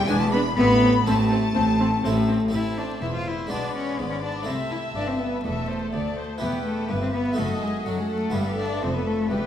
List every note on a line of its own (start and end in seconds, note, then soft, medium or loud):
0.07 0.51 E1 medium
0.07 0.48 E2 medium
0.07 0.52 E2 medium
0.07 0.20 G#3 medium
0.07 0.53 B3 medium
0.07 0.53 D4 medium
0.07 0.17 D4 medium
0.07 0.53 G#4 medium
0.07 0.20 G#5 medium
0.07 0.21 G#5 medium
0.20 0.26 A3 medium
0.20 0.25 A5 medium
0.20 0.32 A5 medium
0.31 0.40 B3 medium
0.31 0.41 D4 medium
0.31 0.55 B5 loud
0.31 0.40 B5 medium
0.56 1.01 A1 medium
0.56 0.98 A2 medium
0.56 1.01 A2 medium
0.56 1.05 B3 loud
0.56 0.66 C4 medium
0.56 1.05 B5 loud
0.56 1.05 B5 medium
0.82 0.90 C4 medium
1.06 1.50 A1 medium
1.06 1.47 A2 medium
1.06 1.50 A2 medium
1.06 2.27 A3 medium
1.06 1.42 C4 medium
1.06 1.15 C4 medium
1.06 1.42 E4 medium
1.06 1.42 A4 medium
1.06 2.27 A5 medium
1.06 2.30 A5 medium
1.31 1.39 C4 medium
1.55 1.99 A1 medium
1.55 1.96 A2 medium
1.55 1.99 A2 medium
1.55 1.64 C4 medium
1.80 1.88 C4 medium
2.03 2.48 A1 medium
2.03 2.48 A2 medium
2.03 2.45 A2 medium
2.03 2.11 C4 medium
2.03 2.40 C4 soft
2.03 2.40 E4 soft
2.03 2.41 A4 medium
2.28 2.36 C4 medium
2.48 3.45 A3 soft
2.48 3.46 C4 soft
2.48 3.47 A4 soft
2.53 2.99 A1 soft
2.53 2.98 A2 soft
2.53 2.99 A2 soft
2.53 2.79 E4 medium
2.53 3.46 C5 soft
2.53 2.63 E5 soft
2.53 2.98 A5 soft
2.78 3.01 D4 medium
2.78 2.88 D5 medium
3.01 3.47 E1 medium
3.01 3.47 E2 soft
3.01 3.06 E4 medium
3.01 3.14 E5 medium
3.01 3.50 C6 soft
3.14 3.29 F4 medium
3.14 3.27 F5 soft
3.27 3.51 E4 medium
3.27 3.35 E5 soft
3.47 3.96 B1 medium
3.47 3.95 B2 soft
3.47 3.96 B2 medium
3.47 4.43 G#3 soft
3.47 4.44 B3 soft
3.47 4.44 D4 soft
3.47 3.74 D5 soft
3.47 3.98 D5 soft
3.47 4.47 B5 soft
3.52 3.75 D4 medium
3.74 4.01 C#4 medium
3.74 3.98 C#5 medium
3.99 4.45 G#1 medium
3.99 4.44 G#2 soft
3.99 4.45 G#2 soft
3.99 4.10 B3 medium
3.99 4.11 B4 medium
3.99 4.47 D5 soft
4.10 4.15 C#4 medium
4.10 4.23 C#5 soft
4.22 4.46 D4 medium
4.22 4.47 D5 soft
4.43 6.35 A3 soft
4.43 4.54 C4 medium
4.43 6.36 E4 soft
4.48 4.93 C2 medium
4.48 4.92 C3 soft
4.48 4.93 C3 medium
4.48 4.72 C5 medium
4.48 5.43 E5 soft
4.48 5.42 A5 soft
4.71 4.79 E4 medium
4.71 4.97 E5 medium
4.96 5.41 G1 medium
4.96 5.40 G2 soft
4.96 5.41 G2 medium
4.96 5.09 D4 medium
4.96 5.08 D5 medium
5.07 5.22 C4 medium
5.07 5.21 C5 soft
5.20 5.43 B3 medium
5.20 5.45 B4 soft
5.43 5.90 E1 medium
5.43 5.89 E2 soft
5.43 5.90 E2 medium
5.43 6.27 A3 medium
5.43 6.29 A4 medium
5.43 5.68 E5 soft
5.43 5.92 A5 soft
5.69 5.93 C5 medium
5.93 6.37 D2 soft
5.93 6.39 D2 medium
5.93 6.17 D5 medium
5.93 6.40 A5 soft
6.18 6.42 C5 soft
6.38 6.86 E2 soft
6.38 6.86 E2 medium
6.38 6.64 B3 medium
6.38 7.33 E4 soft
6.38 7.34 G4 soft
6.38 6.89 B4 soft
6.38 6.89 G5 soft
6.42 6.87 E1 medium
6.42 6.50 B4 medium
6.65 6.90 A3 medium
6.65 6.89 A4 medium
6.89 7.35 G1 medium
6.89 7.33 G2 soft
6.89 7.35 G2 medium
6.89 7.01 B3 medium
6.89 7.01 B4 medium
6.89 7.37 B4 medium
6.89 7.87 E5 medium
7.02 7.06 C4 medium
7.02 7.07 C5 medium
7.13 7.39 B3 medium
7.13 7.38 B4 soft
7.33 8.29 A3 soft
7.33 8.30 D#4 soft
7.33 8.31 F#4 soft
7.37 7.83 F#1 medium
7.37 7.82 F#2 soft
7.37 7.83 F#2 medium
7.37 7.61 A3 medium
7.37 7.63 A4 medium
7.37 7.87 D#5 medium
7.61 7.69 G#3 medium
7.61 7.86 G#4 medium
7.86 8.31 F#2 medium
7.86 7.99 F#3 medium
7.86 8.30 F#3 soft
7.86 8.31 F#3 medium
7.86 7.98 F#4 medium
7.86 9.31 A4 medium
7.86 8.35 F#5 soft
7.98 8.09 G#3 medium
7.98 8.10 G#4 medium
8.09 8.35 A3 medium
8.09 8.34 A4 medium
8.30 8.58 G3 medium
8.30 8.79 B3 soft
8.30 9.46 E4 soft
8.30 8.58 G4 medium
8.34 8.79 G1 medium
8.34 8.79 G2 soft
8.34 8.80 G2 medium
8.34 9.29 E5 soft
8.58 8.84 D4 medium
8.58 8.83 D5 medium
8.82 9.27 F1 medium
8.82 9.27 F2 soft
8.82 9.28 F2 medium
8.82 8.95 C4 medium
8.82 8.94 C5 medium
8.95 9.04 B3 medium
8.95 9.07 B4 medium
9.05 9.32 A3 medium
9.05 9.31 A4 medium
9.30 9.46 E1 medium
9.30 9.46 E2 soft
9.30 9.46 E2 medium
9.30 9.39 G3 medium
9.30 9.46 G4 medium
9.30 9.46 B4 medium
9.30 9.46 G5 medium
9.37 9.46 A3 medium